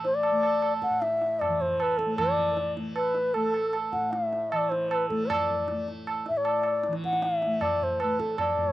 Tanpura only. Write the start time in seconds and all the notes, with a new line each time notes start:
Already playing: A2 E3 A3
0.32 A3
0.90 A2
1.47 E3
2.06 A3
2.18 E3
2.76 A3
3.36 A3
3.94 A2
4.52 E3
5.11 A3
5.70 A3
6.29 A2
6.88 E3
7.46 A3
8.04 A3
8.62 A2